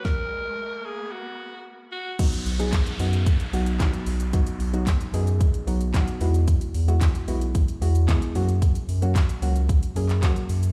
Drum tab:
CC |----------------|x---------------|----------------|----------------|
HH |----------------|xxoxxxoxxxoxxxox|xxoxxxoxxxoxxxox|xxoxxxoxxxoxxxox|
SH |----------------|xxxxxxxxxxxxxxxx|xxxxxxxxxxxxxxxx|xxxxxxxxxxxxxxxx|
CP |----------------|----x-------x---|----x-------x---|----x-------x---|
SD |o---------------|----o-------o---|----o-------o---|----o-------o---|
BD |o---------------|o---o---o---o---|o---o---o---o---|o---o---o---o---|

CC |----------------|
HH |xxoxxxoxxxoxxxox|
SH |xxxxxxxxxxxxxxxx|
CP |----x------xx---|
SD |----o-------o---|
BD |o---o---o---o---|